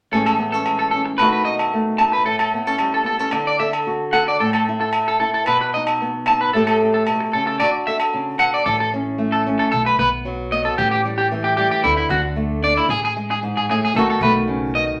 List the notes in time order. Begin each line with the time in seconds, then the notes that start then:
0.12 A2 E3 G#3 C#4 G#4 A4
0.26 A4, low agogo
0.39 B3
0.52 C#4 A4
0.66 G#3, low agogo
0.79 A4
0.91 C#4 A4
1.06 muted clean electric guitar stroke
1.18 B2 D#3 A3 D#4 B4, low agogo
1.22 F#4
1.33 B4
1.45 D#4 D#5
1.59 low agogo
1.73 A3
1.98 D#4 A5, low agogo
2.13 B4
2.25 A2 A4
2.39 A4, low agogo
2.54 B3
2.67 C#4 A4
2.79 G3, low agogo
2.94 A4
3.04 B3 A4
3.19 C#4 A4
3.31 D3, muted clean electric guitar stroke, low agogo
3.47 D5
3.60 A4 E5
3.73 low agogo
3.87 F#4
4.13 A4 F#5, low agogo
4.28 D5
4.40 A2 A4
4.53 A4, low agogo
4.69 E4
4.81 A4
4.93 low agogo
5.08 A4
5.20 E4 A4
5.34 A4
5.46 B2 B4, low agogo
5.61 B4
5.74 D#4 D#5
5.87 low agogo
6.02 B3
6.26 D#4 A5, low agogo
6.41 B4
6.53 A2 A3 G4 A4, muted nylon-string guitar stroke
6.67 A4, low agogo
6.82 G4
6.94 A4
7.07 B2, low agogo
7.20 muted clean electric guitar stroke
7.33 C#3 A4
7.47 A4
7.60 D4 F#4 D5, muted nylon-string guitar stroke, low agogo
7.87 A4 E5
8.00 low agogo
8.14 C#3
8.39 B2 F#5, low agogo
8.54 D5
8.66 A1 A2 A4
8.80 A4
8.94 C#4
9.18 A3
9.32 A4
9.47 C#4
9.59 A4
9.72 B1 A4, muted nylon-string guitar stroke
9.86 B4
9.99 B1 B3 B4
10.25 F#3
10.52 B3 D#5
10.65 A4
10.78 A1 A2 G4
10.91 G4
11.05 G3
11.18 G4
11.32 E3
11.44 G4
11.57 G3 G4
11.71 G4
11.84 D2 D3 E4
11.97 E4
12.10 D2 D4 F#4
12.36 A3
12.63 D4 D5
12.77 E4
12.89 A1 G#4, muted nylon-string guitar stroke
13.05 G#4
13.17 G#3
13.31 G#4
13.43 G#2
13.57 G#4
13.70 A2 G#4
13.85 G#4
13.95 B1 B2 D#3 A3 D#4 F#4 A4
14.10 A4
14.21 B1 A3 B4
14.47 C#3
14.75 B2 D#5